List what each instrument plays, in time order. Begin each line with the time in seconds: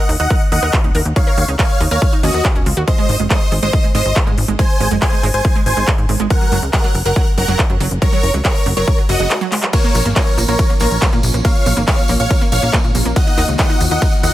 0.09 analog synth bass D#2, open hi-hat
0.20 analog synth bass D#2, synth arpeggio sound D#4, supersaw synth D#5 F#5, closed hi-hat
0.30 synth arpeggio sound A#4, kick, closed hi-hat
0.41 closed hi-hat
0.52 analog synth bass D#2, synth arpeggio sound D#4, supersaw synth D#5 F#5, open hi-hat
0.63 analog synth bass D#2, synth arpeggio sound A#4, closed hi-hat
0.73 kick, clap, closed hi-hat
0.84 analog synth bass D#1, synth arpeggio sound D#4, closed hi-hat
0.95 analog synth bass D#2, synth arpeggio sound A#4, open hi-hat
1.05 analog synth bass D#2, closed hi-hat
1.16 synth arpeggio sound D#4, supersaw synth C#5 F5, kick, closed hi-hat
1.27 synth arpeggio sound A#4, closed hi-hat
1.37 analog synth bass D#2, open hi-hat
1.48 analog synth bass C#2, synth arpeggio sound D#4, closed hi-hat
1.59 synth arpeggio sound A#4, supersaw synth C#5 F5, kick, clap, closed hi-hat
1.70 closed hi-hat
1.80 analog synth bass D#2, synth arpeggio sound D#4, open hi-hat
1.91 analog synth bass D#2, synth arpeggio sound A#4, supersaw synth C#5 F5, closed hi-hat
2.02 kick, closed hi-hat
2.13 synth arpeggio sound D#4, closed hi-hat
2.23 analog synth bass D#2, synth arpeggio sound C#4, supersaw synth F#4 D#5, open hi-hat
2.34 analog synth bass D#2, closed hi-hat
2.45 synth arpeggio sound D#5, kick, clap, closed hi-hat
2.55 analog synth bass D#1, synth arpeggio sound C#4, closed hi-hat
2.66 analog synth bass C#2, synth arpeggio sound F4, open hi-hat
2.77 analog synth bass D#2, synth arpeggio sound F#4, closed hi-hat
2.88 synth arpeggio sound G#3, supersaw synth C5 D#5, kick, closed hi-hat
2.98 synth arpeggio sound G#3, closed hi-hat
3.09 analog synth bass G#1, open hi-hat
3.20 analog synth bass F#1, synth arpeggio sound G#3, closed hi-hat
3.30 synth arpeggio sound G#3, supersaw synth C5 D#5, kick, clap, closed hi-hat
3.41 closed hi-hat
3.52 analog synth bass G#1, synth arpeggio sound G#3, open hi-hat
3.63 analog synth bass G#1, synth arpeggio sound G#3, supersaw synth C5 D#5, closed hi-hat
3.73 kick, closed hi-hat
3.84 synth arpeggio sound G#3, closed hi-hat
3.95 analog synth bass G#1, synth arpeggio sound G#3, supersaw synth C5 D#5, open hi-hat
4.05 analog synth bass G#1, closed hi-hat
4.16 synth arpeggio sound G#3, kick, clap, closed hi-hat
4.27 analog synth bass G#2, synth arpeggio sound G#3, closed hi-hat
4.38 analog synth bass G#1, open hi-hat
4.48 analog synth bass G#1, synth arpeggio sound G#3, closed hi-hat
4.59 synth arpeggio sound G#3, supersaw synth C5 G#5, kick, closed hi-hat
4.70 closed hi-hat
4.80 analog synth bass G#1, synth arpeggio sound G#3, open hi-hat
4.91 analog synth bass F#1, synth arpeggio sound G#3, closed hi-hat
5.02 supersaw synth C5 G#5, kick, clap, closed hi-hat
5.13 synth arpeggio sound G#3, closed hi-hat
5.23 analog synth bass G#1, synth arpeggio sound G#3, open hi-hat
5.34 analog synth bass G#1, supersaw synth C5 G#5, closed hi-hat
5.45 synth arpeggio sound G#3, kick, closed hi-hat
5.55 synth arpeggio sound G#3, closed hi-hat
5.66 analog synth bass G#1, supersaw synth C5 G#5, open hi-hat
5.77 analog synth bass G#1, synth arpeggio sound G#3, closed hi-hat
5.88 synth arpeggio sound G#3, kick, clap, closed hi-hat
5.98 analog synth bass G#2, closed hi-hat
6.09 analog synth bass G#1, synth arpeggio sound G#3, open hi-hat
6.20 analog synth bass G#1, synth arpeggio sound G#3, closed hi-hat
6.30 supersaw synth A#4 F#5, kick, closed hi-hat
6.41 synth arpeggio sound F#3, closed hi-hat
6.52 analog synth bass F#1, synth arpeggio sound F#3, open hi-hat
6.62 analog synth bass C#2, closed hi-hat
6.73 synth arpeggio sound F#3, supersaw synth A#4 F#5, kick, clap, closed hi-hat
6.84 synth arpeggio sound F#3, closed hi-hat
6.95 analog synth bass F#1, open hi-hat
7.05 analog synth bass F#1, synth arpeggio sound F#3, supersaw synth A#4 F#5, closed hi-hat
7.16 synth arpeggio sound F#3, kick, closed hi-hat
7.27 closed hi-hat
7.37 analog synth bass F#1, synth arpeggio sound F#3, supersaw synth A#4 F#5, open hi-hat
7.48 analog synth bass F#1, synth arpeggio sound F#3, closed hi-hat
7.59 kick, clap, closed hi-hat
7.70 analog synth bass F#2, synth arpeggio sound F#3, closed hi-hat
7.80 analog synth bass F#1, synth arpeggio sound F#3, open hi-hat
7.91 analog synth bass F#1, closed hi-hat
8.02 synth arpeggio sound F#3, supersaw synth A#4 C#5, kick, closed hi-hat
8.12 synth arpeggio sound F#3, closed hi-hat
8.23 analog synth bass F#1, open hi-hat
8.34 analog synth bass C#2, synth arpeggio sound F#3, closed hi-hat
8.45 synth arpeggio sound F#3, supersaw synth A#4 C#5, kick, clap, closed hi-hat
8.55 open hi-hat
8.66 analog synth bass F#1, synth arpeggio sound F#3, open hi-hat
8.77 analog synth bass F#1, synth arpeggio sound F#3, supersaw synth A#4 C#5, closed hi-hat
8.88 kick, closed hi-hat
8.98 synth arpeggio sound F#3, closed hi-hat
9.09 analog synth bass F#1, synth arpeggio sound F#3, supersaw synth F#4 D#5, open hi-hat
9.20 analog synth bass F#1, synth arpeggio sound C#3, closed hi-hat
9.30 synth arpeggio sound G#3, clap, closed hi-hat
9.41 synth arpeggio sound F#3, closed hi-hat
9.52 synth arpeggio sound G#3, clap, open hi-hat
9.63 synth arpeggio sound F#3, clap, closed hi-hat
9.73 analog synth pad F3 A#3 C#4, synth arpeggio sound A#3, supersaw synth A#4 C#5, kick, closed hi-hat, crash, ride, tambourine
9.84 synth arpeggio sound A#3, closed hi-hat, tambourine
9.95 analog synth bass A#1, open hi-hat, tambourine
10.05 analog synth bass G#1, synth arpeggio sound A#3, closed hi-hat, tambourine
10.16 synth arpeggio sound A#3, supersaw synth A#4 C#5, kick, clap, closed hi-hat, ride, tambourine
10.27 closed hi-hat, tambourine
10.38 analog synth bass A#1, synth arpeggio sound A#3, open hi-hat, tambourine
10.48 analog synth bass A#1, synth arpeggio sound A#3, supersaw synth A#4 C#5, closed hi-hat, tambourine
10.59 kick, closed hi-hat, ride, tambourine
10.70 synth arpeggio sound A#3, closed hi-hat, tambourine
10.80 analog synth bass A#1, synth arpeggio sound A#3, supersaw synth A#4 C#5, open hi-hat, tambourine
10.91 analog synth bass A#1, closed hi-hat, tambourine
11.02 synth arpeggio sound A#3, kick, clap, closed hi-hat, ride, tambourine
11.13 analog synth bass A#2, synth arpeggio sound A#3, closed hi-hat, tambourine
11.23 analog synth bass A#1, open hi-hat, tambourine
11.34 analog synth bass A#1, synth arpeggio sound A#3, closed hi-hat, tambourine
11.45 synth arpeggio sound A#3, supersaw synth C#5 F5, kick, closed hi-hat, ride, tambourine
11.56 closed hi-hat, tambourine
11.66 analog synth bass A#1, synth arpeggio sound A#3, open hi-hat, tambourine
11.77 analog synth bass G#1, synth arpeggio sound A#3, closed hi-hat, tambourine
11.88 supersaw synth C#5 F5, kick, clap, closed hi-hat, ride, tambourine
11.98 synth arpeggio sound A#3, closed hi-hat, tambourine
12.08 analog synth bass A#1, synth arpeggio sound A#3, open hi-hat, tambourine
12.19 analog synth bass A#1, supersaw synth C#5 F5, closed hi-hat, tambourine
12.30 synth arpeggio sound A#3, kick, closed hi-hat, ride, tambourine
12.41 synth arpeggio sound A#3, closed hi-hat, tambourine
12.52 analog synth bass A#1, supersaw synth C#5 F5, open hi-hat, tambourine
12.62 analog synth bass A#1, synth arpeggio sound A#3, closed hi-hat, tambourine
12.73 synth arpeggio sound A#3, kick, clap, closed hi-hat, ride, tambourine
12.84 analog synth bass A#2, closed hi-hat, tambourine
12.95 analog synth bass A#1, synth arpeggio sound A#3, open hi-hat, tambourine
13.05 analog synth bass A#1, synth arpeggio sound A#3, closed hi-hat, tambourine
13.16 analog synth pad D#3 F4 F#4, supersaw synth D#5 F#5, kick, closed hi-hat, ride, tambourine
13.27 synth arpeggio sound D#4, closed hi-hat, tambourine
13.38 analog synth bass D#2, synth arpeggio sound D#4, open hi-hat, tambourine
13.48 analog synth bass C#2, closed hi-hat, tambourine
13.58 synth arpeggio sound D#4, supersaw synth D#5 F#5, kick, clap, closed hi-hat, ride, tambourine
13.70 synth arpeggio sound D#4, closed hi-hat, tambourine
13.81 analog synth bass D#2, open hi-hat, tambourine
13.91 analog synth bass D#2, synth arpeggio sound D#4, supersaw synth D#5 F#5, closed hi-hat, tambourine
14.02 synth arpeggio sound D#4, kick, closed hi-hat, ride, tambourine
14.13 closed hi-hat, tambourine
14.23 analog synth bass D#2, synth arpeggio sound D#4, supersaw synth D#5 F#5, open hi-hat, tambourine